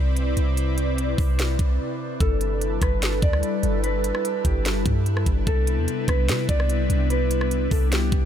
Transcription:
0.00 0.35 C2 loud
0.00 2.17 C3 medium
0.00 2.17 C4 medium
0.00 2.17 E4 medium
0.00 2.17 B4 medium
0.00 2.17 D5 medium
0.17 closed hi-hat medium
0.37 1.15 C2 loud
0.37 closed hi-hat medium
0.57 closed hi-hat medium
0.78 closed hi-hat medium
0.98 closed hi-hat medium
1.18 1.58 C2 loud
1.18 kick loud
1.18 open hi-hat medium
1.39 snare loud
1.39 closed hi-hat medium
1.59 1.79 C2 loud
1.59 kick loud
1.59 closed hi-hat medium
2.20 2.79 G1 loud
2.20 5.44 G3 medium
2.20 8.25 D4 medium
2.20 8.25 E4 medium
2.20 2.78 A4 loud
2.20 5.44 A4 medium
2.20 5.44 B4 medium
2.20 kick loud
2.20 closed hi-hat medium
2.41 closed hi-hat medium
2.61 closed hi-hat medium
2.81 3.21 G1 loud
2.81 3.20 B4 medium
2.81 kick loud
2.81 cross-stick loud
2.81 closed hi-hat medium
3.02 snare loud
3.02 closed hi-hat medium
3.22 3.42 D2 loud
3.22 3.80 D5 medium
3.22 kick loud
3.22 closed hi-hat medium
3.33 cross-stick loud
3.43 closed hi-hat medium
3.63 4.12 G1 loud
3.63 closed hi-hat medium
3.84 4.41 B4 loud
3.84 closed hi-hat medium
4.04 closed hi-hat medium
4.15 cross-stick loud
4.25 closed hi-hat medium
4.45 4.84 G1 loud
4.45 5.43 G4 medium
4.45 kick loud
4.45 closed hi-hat medium
4.65 snare loud
4.65 closed hi-hat medium
4.86 5.25 G2 loud
4.86 kick loud
4.86 closed hi-hat medium
5.06 closed hi-hat medium
5.17 cross-stick loud
5.26 5.46 G1 loud
5.26 kick medium
5.26 closed hi-hat medium
5.46 5.79 C2 loud
5.46 8.25 C3 medium
5.46 8.25 G3 medium
5.46 8.25 B3 medium
5.46 6.05 A4 loud
5.46 kick loud
5.46 closed hi-hat medium
5.67 closed hi-hat medium
5.77 5.87 E2 loud
5.88 closed hi-hat medium
6.08 6.30 C2 loud
6.08 6.47 B4 medium
6.08 kick loud
6.08 cross-stick loud
6.08 closed hi-hat medium
6.29 6.48 C3 loud
6.29 snare loud
6.29 closed hi-hat medium
6.49 6.88 C2 loud
6.49 7.06 D5 medium
6.49 kick loud
6.49 closed hi-hat medium
6.60 cross-stick loud
6.69 closed hi-hat medium
6.90 7.68 C2 loud
6.90 closed hi-hat medium
7.10 7.68 B4 loud
7.10 closed hi-hat medium
7.31 closed hi-hat medium
7.41 cross-stick loud
7.51 closed hi-hat medium
7.71 8.11 C2 loud
7.71 7.91 A4 medium
7.71 kick loud
7.71 open hi-hat medium
7.92 8.25 G4 medium
7.92 snare loud
7.92 closed hi-hat medium
8.12 8.25 C2 loud
8.12 kick loud
8.12 closed hi-hat medium

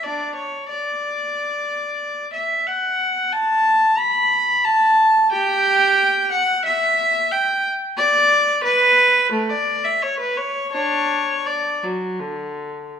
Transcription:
0.03 0.34 D4 medium
0.03 0.36 D5 medium
0.36 0.68 C#5 medium
0.69 2.30 D5 medium
2.33 2.66 E5 medium
2.67 3.33 F#5 medium
3.33 3.99 A5 loud
3.99 4.65 B5 medium
4.65 5.30 A5 loud
5.32 6.28 G4 medium
5.32 6.30 G5 loud
6.32 6.64 F#5 loud
6.65 7.30 E5 loud
7.32 7.65 G5 medium
7.97 8.61 D5 loud
8.64 9.33 B4 loud
9.32 9.49 A3 medium
9.50 9.84 D5 medium
9.85 10.02 E5 medium
10.02 10.20 C#5 medium
10.20 10.37 B4 medium
10.37 10.72 C#5 medium
10.72 11.41 D4 medium
10.72 11.44 C#5 medium
11.46 11.83 D5 medium
11.83 12.19 F#3 medium
12.20 12.91 D3 medium

